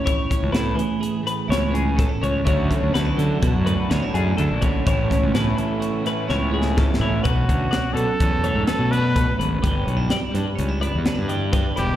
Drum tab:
HH |x--x--x--x--x--x--x--x--x--x--|x--x--x--x--x--x--x--x--x--x--|x--x--x--x--x--x--------------|x--x--x--x--x--x--x--x--x--x--|
SD |---o--o-----------o-----------|------o--o--------o-----------|---o--o--------o--o---o-o-o---|------o-----------o-----------|
BD |o--o--------------------o-----|o--o--------o--------------o--|o--o--------------------o-----|o--o--------o-----------o-----|

HH |x--x--x--x--x--x--x--x--x--x--|
SD |------o--o--------o-----------|
BD |o-----------------------o-----|